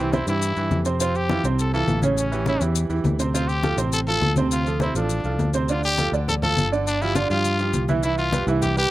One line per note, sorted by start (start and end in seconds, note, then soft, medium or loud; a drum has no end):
0.00 0.21 C2 medium
0.00 0.10 E3 medium
0.00 0.15 C4 medium
0.00 0.10 E4 medium
0.00 0.10 G4 medium
0.13 0.25 C3 medium
0.13 0.25 C4 medium
0.13 0.27 E4 medium
0.13 0.25 C5 medium
0.13 high conga medium
0.13 maracas soft
0.27 0.54 G2 medium
0.27 0.51 E3 medium
0.27 0.52 E4 medium
0.27 0.82 E4 medium
0.27 0.52 G4 medium
0.27 high conga soft
0.27 maracas medium
0.42 high conga soft
0.42 maracas medium
0.56 0.70 G2 medium
0.56 0.80 E3 medium
0.56 0.80 E4 medium
0.56 0.81 G4 medium
0.56 high conga soft
0.56 maracas soft
0.71 1.38 F2 medium
0.71 high conga medium
0.71 maracas soft
0.85 0.97 C3 medium
0.85 0.97 C4 medium
0.85 0.98 C5 medium
0.85 high conga soft
0.85 maracas medium
1.00 1.24 C3 medium
1.00 1.24 C4 medium
1.00 1.18 F4 medium
1.00 1.25 C5 medium
1.00 high conga soft
1.00 maracas medium
1.15 1.45 G4 medium
1.15 high conga soft
1.15 maracas soft
1.29 1.41 E3 medium
1.29 1.41 E4 medium
1.29 1.42 F4 medium
1.29 high conga medium
1.29 maracas soft
1.44 1.85 C2 medium
1.44 1.68 C3 medium
1.44 1.68 C4 medium
1.44 1.69 C5 medium
1.44 high conga soft
1.44 maracas medium
1.58 1.73 A4 medium
1.58 high conga soft
1.58 maracas medium
1.73 1.97 E3 medium
1.73 1.98 E4 medium
1.73 1.98 F4 medium
1.73 2.01 A4 medium
1.73 high conga soft
1.73 maracas soft
1.87 2.56 A1 medium
1.87 high conga medium
1.87 maracas soft
2.02 2.27 C#3 medium
2.02 2.27 C#4 medium
2.02 2.27 C#5 medium
2.02 high conga medium
2.02 maracas medium
2.17 2.45 C#4 medium
2.17 high conga soft
2.17 maracas medium
2.32 2.44 E3 medium
2.32 2.44 E4 medium
2.32 2.44 G4 medium
2.32 high conga soft
2.32 maracas soft
2.46 2.59 C#3 medium
2.46 2.59 C#4 medium
2.46 2.61 E4 medium
2.46 2.59 C#5 medium
2.46 high conga medium
2.46 maracas soft
2.61 2.88 E2 medium
2.61 2.85 E3 medium
2.61 2.85 E4 medium
2.61 2.85 G4 medium
2.61 high conga soft
2.61 maracas medium
2.75 high conga soft
2.75 maracas medium
2.89 3.03 E2 medium
2.89 3.14 E3 medium
2.89 3.14 E4 medium
2.89 3.14 G4 medium
2.89 high conga soft
2.89 maracas soft
3.04 3.72 D2 medium
3.04 high conga medium
3.04 maracas soft
3.19 3.31 C3 medium
3.19 3.31 C4 medium
3.19 3.32 C5 medium
3.19 high conga soft
3.19 maracas medium
3.34 3.58 C3 medium
3.34 3.58 C4 medium
3.34 3.50 F4 medium
3.34 3.59 C5 medium
3.34 high conga soft
3.34 maracas medium
3.48 3.78 G4 medium
3.48 high conga soft
3.48 maracas soft
3.63 3.75 F3 medium
3.63 3.76 F4 medium
3.63 3.76 A4 medium
3.63 high conga medium
3.63 maracas soft
3.77 4.18 A1 medium
3.77 4.02 C3 medium
3.77 4.02 C4 medium
3.77 4.02 C5 medium
3.77 high conga soft
3.77 maracas medium
3.92 4.00 A4 loud
3.92 high conga soft
3.92 maracas medium
4.07 4.32 F3 medium
4.07 4.32 F4 medium
4.07 4.35 A4 loud
4.07 4.32 A4 medium
4.07 high conga soft
4.07 maracas soft
4.21 4.89 D2 medium
4.21 high conga medium
4.21 maracas soft
4.36 4.61 C3 medium
4.36 4.61 C4 medium
4.36 4.61 C5 medium
4.36 high conga medium
4.36 maracas medium
4.51 4.79 F4 medium
4.51 high conga soft
4.51 maracas medium
4.66 4.78 F3 medium
4.66 4.79 F4 medium
4.66 4.79 A4 medium
4.66 maracas soft
4.80 4.93 C3 medium
4.80 4.93 C4 medium
4.80 4.95 E4 medium
4.80 4.93 C5 medium
4.80 high conga medium
4.80 maracas soft
4.95 5.22 A1 medium
4.95 5.20 F3 medium
4.95 5.51 D4 medium
4.95 5.20 F4 medium
4.95 5.20 A4 medium
4.95 high conga soft
4.95 maracas medium
5.09 high conga soft
5.09 maracas medium
5.24 5.38 C2 medium
5.24 5.49 F3 medium
5.24 5.49 F4 medium
5.24 5.49 A4 medium
5.24 high conga soft
5.24 maracas soft
5.38 6.07 D2 medium
5.38 high conga medium
5.38 maracas soft
5.53 5.66 C3 medium
5.53 5.66 C4 medium
5.53 5.67 C5 medium
5.53 high conga soft
5.53 maracas medium
5.69 5.93 D3 medium
5.69 5.93 D4 medium
5.69 5.83 F4 medium
5.69 5.93 D5 medium
5.69 high conga soft
5.69 maracas medium
5.83 6.11 G4 loud
5.83 high conga soft
5.83 maracas soft
5.98 6.10 F3 medium
5.98 6.10 F4 medium
5.98 6.11 A4 medium
5.98 high conga medium
5.98 maracas medium
6.12 6.53 D2 medium
6.12 6.37 D3 medium
6.12 6.37 D4 medium
6.12 6.38 D5 medium
6.12 high conga soft
6.12 maracas soft
6.28 6.35 A4 loud
6.28 high conga soft
6.28 low conga medium
6.28 maracas medium
6.42 6.67 F3 medium
6.42 6.67 F4 medium
6.42 6.70 A4 loud
6.42 6.67 A4 medium
6.42 high conga soft
6.42 low conga medium
6.42 maracas soft
6.57 7.25 G1 medium
6.57 high conga medium
6.57 maracas medium
6.72 6.96 D3 medium
6.72 6.96 D4 medium
6.72 6.96 D5 medium
6.72 maracas soft
6.87 7.03 D4 medium
6.87 high conga soft
6.87 maracas medium
7.01 7.13 F3 medium
7.01 7.17 E4 loud
7.01 7.13 F4 medium
7.01 7.14 G4 medium
7.01 high conga soft
7.01 maracas soft
7.15 7.28 D3 medium
7.15 7.28 D4 medium
7.15 7.30 F4 loud
7.15 7.28 D5 medium
7.15 high conga medium
7.15 maracas medium
7.30 7.71 G2 medium
7.30 7.55 F3 medium
7.30 7.85 F4 loud
7.30 7.55 F4 medium
7.30 7.55 G4 medium
7.30 high conga soft
7.30 maracas soft
7.44 high conga soft
7.44 maracas medium
7.59 7.84 F3 medium
7.59 7.84 F4 medium
7.59 7.84 G4 medium
7.59 high conga soft
7.59 maracas soft
7.73 8.42 C2 medium
7.73 high conga medium
7.73 maracas medium
7.88 8.01 E3 medium
7.88 8.01 E4 medium
7.88 8.01 E5 medium
7.88 high conga medium
7.88 maracas soft
8.03 8.27 E3 medium
8.03 8.28 E4 medium
8.03 8.17 E4 medium
8.03 8.28 E5 medium
8.03 maracas medium
8.18 8.45 F4 loud
8.18 high conga soft
8.18 maracas soft
8.32 8.44 G3 medium
8.32 8.45 G4 medium
8.32 8.45 B4 medium
8.32 high conga medium
8.32 maracas medium
8.47 8.88 C2 loud
8.47 8.72 E3 medium
8.47 8.72 E4 medium
8.47 8.72 E5 medium
8.47 high conga soft
8.47 maracas soft
8.62 8.76 G4 medium
8.62 high conga soft
8.62 low conga medium
8.62 maracas medium
8.76 8.91 G3 medium
8.76 8.91 G4 medium
8.76 8.91 G4 loud
8.76 8.91 B4 medium
8.76 high conga soft
8.76 maracas soft